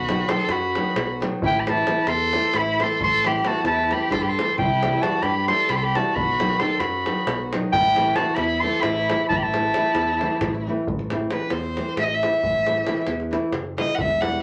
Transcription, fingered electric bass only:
0, 0, Header, 1, 2, 480
1, 0, Start_track
1, 0, Tempo, 450450
1, 1524, Time_signature, 7, 3, 24, 8
1, 8239, Tempo, 446761
1, 15432, End_track
2, 0, Start_track
2, 0, Title_t, "Fingered electric bass"
2, 0, Program_c, 0, 33
2, 0, Note_on_c, 0, 35, 90
2, 244, Note_off_c, 0, 35, 0
2, 518, Note_on_c, 0, 42, 85
2, 820, Note_off_c, 0, 42, 0
2, 1022, Note_on_c, 0, 35, 92
2, 1323, Note_off_c, 0, 35, 0
2, 1534, Note_on_c, 0, 33, 85
2, 1940, Note_off_c, 0, 33, 0
2, 2212, Note_on_c, 0, 40, 91
2, 2510, Note_off_c, 0, 40, 0
2, 2710, Note_on_c, 0, 33, 100
2, 3009, Note_off_c, 0, 33, 0
2, 3205, Note_on_c, 0, 33, 100
2, 3614, Note_off_c, 0, 33, 0
2, 3883, Note_on_c, 0, 40, 91
2, 4184, Note_off_c, 0, 40, 0
2, 4376, Note_on_c, 0, 43, 102
2, 4679, Note_off_c, 0, 43, 0
2, 4880, Note_on_c, 0, 36, 101
2, 5291, Note_off_c, 0, 36, 0
2, 5572, Note_on_c, 0, 43, 90
2, 5870, Note_off_c, 0, 43, 0
2, 6068, Note_on_c, 0, 36, 99
2, 6367, Note_off_c, 0, 36, 0
2, 6563, Note_on_c, 0, 35, 85
2, 6971, Note_off_c, 0, 35, 0
2, 7248, Note_on_c, 0, 42, 91
2, 7546, Note_off_c, 0, 42, 0
2, 7744, Note_on_c, 0, 35, 95
2, 8043, Note_off_c, 0, 35, 0
2, 8240, Note_on_c, 0, 33, 104
2, 8651, Note_off_c, 0, 33, 0
2, 8931, Note_on_c, 0, 40, 96
2, 9230, Note_off_c, 0, 40, 0
2, 9428, Note_on_c, 0, 33, 106
2, 9729, Note_off_c, 0, 33, 0
2, 9932, Note_on_c, 0, 33, 90
2, 10340, Note_off_c, 0, 33, 0
2, 10619, Note_on_c, 0, 40, 76
2, 10917, Note_off_c, 0, 40, 0
2, 11116, Note_on_c, 0, 33, 91
2, 11415, Note_off_c, 0, 33, 0
2, 11623, Note_on_c, 0, 33, 71
2, 12028, Note_off_c, 0, 33, 0
2, 12299, Note_on_c, 0, 40, 71
2, 12596, Note_off_c, 0, 40, 0
2, 12794, Note_on_c, 0, 33, 79
2, 13093, Note_off_c, 0, 33, 0
2, 13295, Note_on_c, 0, 33, 73
2, 13701, Note_off_c, 0, 33, 0
2, 13977, Note_on_c, 0, 40, 87
2, 14273, Note_off_c, 0, 40, 0
2, 14462, Note_on_c, 0, 30, 91
2, 14762, Note_off_c, 0, 30, 0
2, 14966, Note_on_c, 0, 28, 86
2, 15372, Note_off_c, 0, 28, 0
2, 15432, End_track
0, 0, End_of_file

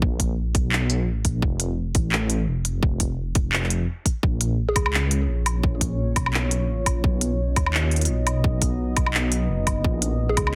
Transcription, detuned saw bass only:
0, 0, Header, 1, 2, 480
1, 0, Start_track
1, 0, Tempo, 350877
1, 27, Time_signature, 4, 2, 24, 8
1, 14434, End_track
2, 0, Start_track
2, 0, Title_t, "Detuned saw bass"
2, 0, Program_c, 0, 39
2, 27, Note_on_c, 0, 34, 90
2, 731, Note_off_c, 0, 34, 0
2, 748, Note_on_c, 0, 35, 92
2, 1418, Note_off_c, 0, 35, 0
2, 1418, Note_on_c, 0, 34, 92
2, 1691, Note_off_c, 0, 34, 0
2, 1708, Note_on_c, 0, 34, 92
2, 1931, Note_off_c, 0, 34, 0
2, 1947, Note_on_c, 0, 29, 92
2, 2651, Note_off_c, 0, 29, 0
2, 2665, Note_on_c, 0, 33, 89
2, 3370, Note_off_c, 0, 33, 0
2, 3388, Note_on_c, 0, 29, 94
2, 3851, Note_off_c, 0, 29, 0
2, 3866, Note_on_c, 0, 29, 93
2, 4570, Note_off_c, 0, 29, 0
2, 4588, Note_on_c, 0, 29, 89
2, 5291, Note_off_c, 0, 29, 0
2, 5787, Note_on_c, 0, 34, 92
2, 6491, Note_off_c, 0, 34, 0
2, 6507, Note_on_c, 0, 37, 91
2, 7211, Note_off_c, 0, 37, 0
2, 7223, Note_on_c, 0, 34, 93
2, 7689, Note_off_c, 0, 34, 0
2, 7707, Note_on_c, 0, 34, 89
2, 8411, Note_off_c, 0, 34, 0
2, 8429, Note_on_c, 0, 35, 89
2, 9099, Note_off_c, 0, 35, 0
2, 9099, Note_on_c, 0, 34, 89
2, 9372, Note_off_c, 0, 34, 0
2, 9389, Note_on_c, 0, 34, 90
2, 9612, Note_off_c, 0, 34, 0
2, 9629, Note_on_c, 0, 35, 92
2, 10332, Note_off_c, 0, 35, 0
2, 10348, Note_on_c, 0, 39, 92
2, 11051, Note_off_c, 0, 39, 0
2, 11068, Note_on_c, 0, 35, 96
2, 11531, Note_off_c, 0, 35, 0
2, 11548, Note_on_c, 0, 35, 92
2, 12251, Note_off_c, 0, 35, 0
2, 12268, Note_on_c, 0, 35, 92
2, 12971, Note_off_c, 0, 35, 0
2, 12987, Note_on_c, 0, 30, 91
2, 13451, Note_off_c, 0, 30, 0
2, 13467, Note_on_c, 0, 34, 95
2, 14171, Note_off_c, 0, 34, 0
2, 14187, Note_on_c, 0, 37, 90
2, 14434, Note_off_c, 0, 37, 0
2, 14434, End_track
0, 0, End_of_file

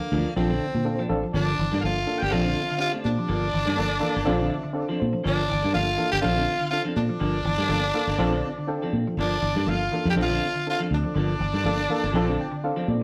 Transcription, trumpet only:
0, 0, Header, 1, 2, 480
1, 0, Start_track
1, 0, Tempo, 487805
1, 1321, Time_signature, 4, 2, 24, 8
1, 5643, Tempo, 492611
1, 12755, End_track
2, 0, Start_track
2, 0, Title_t, "Trumpet"
2, 0, Program_c, 0, 56
2, 1316, Note_on_c, 0, 74, 78
2, 1763, Note_off_c, 0, 74, 0
2, 1782, Note_on_c, 0, 77, 81
2, 2149, Note_on_c, 0, 79, 84
2, 2164, Note_off_c, 0, 77, 0
2, 2258, Note_on_c, 0, 77, 90
2, 2273, Note_off_c, 0, 79, 0
2, 2723, Note_off_c, 0, 77, 0
2, 2729, Note_on_c, 0, 77, 78
2, 2843, Note_off_c, 0, 77, 0
2, 2958, Note_on_c, 0, 74, 82
2, 4862, Note_off_c, 0, 74, 0
2, 5180, Note_on_c, 0, 74, 79
2, 5621, Note_off_c, 0, 74, 0
2, 5651, Note_on_c, 0, 77, 87
2, 5994, Note_off_c, 0, 77, 0
2, 6036, Note_on_c, 0, 79, 84
2, 6080, Note_off_c, 0, 79, 0
2, 6134, Note_on_c, 0, 77, 89
2, 6575, Note_off_c, 0, 77, 0
2, 6603, Note_on_c, 0, 77, 76
2, 6711, Note_off_c, 0, 77, 0
2, 6847, Note_on_c, 0, 74, 81
2, 8726, Note_off_c, 0, 74, 0
2, 9003, Note_on_c, 0, 74, 81
2, 9491, Note_on_c, 0, 77, 83
2, 9506, Note_off_c, 0, 74, 0
2, 9860, Note_off_c, 0, 77, 0
2, 9899, Note_on_c, 0, 79, 80
2, 9938, Note_off_c, 0, 79, 0
2, 10016, Note_on_c, 0, 77, 89
2, 10439, Note_off_c, 0, 77, 0
2, 10504, Note_on_c, 0, 77, 73
2, 10599, Note_off_c, 0, 77, 0
2, 10737, Note_on_c, 0, 74, 76
2, 12591, Note_off_c, 0, 74, 0
2, 12755, End_track
0, 0, End_of_file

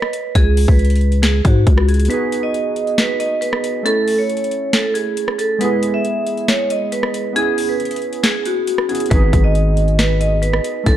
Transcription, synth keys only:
0, 0, Header, 1, 2, 480
1, 0, Start_track
1, 0, Tempo, 437956
1, 387, Time_signature, 4, 2, 24, 8
1, 12022, End_track
2, 0, Start_track
2, 0, Title_t, "Synth keys"
2, 0, Program_c, 0, 88
2, 2278, Note_on_c, 0, 59, 68
2, 2298, Note_on_c, 0, 63, 66
2, 2318, Note_on_c, 0, 66, 63
2, 2337, Note_on_c, 0, 68, 80
2, 2520, Control_c, 0, 64, 127
2, 4174, Note_off_c, 0, 59, 0
2, 4184, Note_off_c, 0, 63, 0
2, 4194, Note_off_c, 0, 66, 0
2, 4196, Note_on_c, 0, 57, 70
2, 4204, Note_off_c, 0, 68, 0
2, 4216, Note_on_c, 0, 61, 61
2, 4236, Note_on_c, 0, 64, 62
2, 4242, Control_c, 0, 64, 0
2, 4439, Control_c, 0, 64, 127
2, 6093, Note_off_c, 0, 57, 0
2, 6103, Note_off_c, 0, 61, 0
2, 6113, Note_off_c, 0, 64, 0
2, 6121, Note_on_c, 0, 56, 73
2, 6140, Note_on_c, 0, 59, 69
2, 6160, Control_c, 0, 64, 0
2, 6161, Note_on_c, 0, 64, 62
2, 6180, Note_on_c, 0, 68, 80
2, 6375, Control_c, 0, 64, 127
2, 8015, Note_off_c, 0, 56, 0
2, 8019, Note_off_c, 0, 59, 0
2, 8033, Note_on_c, 0, 59, 67
2, 8035, Note_off_c, 0, 64, 0
2, 8046, Note_off_c, 0, 68, 0
2, 8053, Note_on_c, 0, 61, 68
2, 8072, Note_on_c, 0, 64, 63
2, 8081, Control_c, 0, 64, 0
2, 8092, Note_on_c, 0, 68, 78
2, 8244, Control_c, 0, 64, 127
2, 9696, Note_off_c, 0, 59, 0
2, 9706, Note_off_c, 0, 61, 0
2, 9716, Note_off_c, 0, 64, 0
2, 9726, Note_off_c, 0, 68, 0
2, 9739, Note_on_c, 0, 59, 53
2, 9749, Note_on_c, 0, 61, 49
2, 9759, Note_on_c, 0, 64, 49
2, 9769, Note_on_c, 0, 68, 61
2, 9945, Note_off_c, 0, 59, 0
2, 9958, Note_on_c, 0, 59, 68
2, 9977, Note_on_c, 0, 63, 64
2, 9988, Note_off_c, 0, 61, 0
2, 9993, Note_off_c, 0, 64, 0
2, 9998, Note_off_c, 0, 68, 0
2, 9998, Note_on_c, 0, 66, 63
2, 10003, Control_c, 0, 64, 0
2, 10017, Note_on_c, 0, 68, 81
2, 10164, Control_c, 0, 64, 127
2, 11854, Note_off_c, 0, 59, 0
2, 11864, Note_off_c, 0, 63, 0
2, 11874, Note_off_c, 0, 66, 0
2, 11875, Note_on_c, 0, 57, 70
2, 11884, Note_off_c, 0, 68, 0
2, 11895, Note_on_c, 0, 61, 59
2, 11915, Note_on_c, 0, 64, 66
2, 11923, Control_c, 0, 64, 0
2, 12022, Note_off_c, 0, 57, 0
2, 12022, Note_off_c, 0, 61, 0
2, 12022, Note_off_c, 0, 64, 0
2, 12022, End_track
0, 0, End_of_file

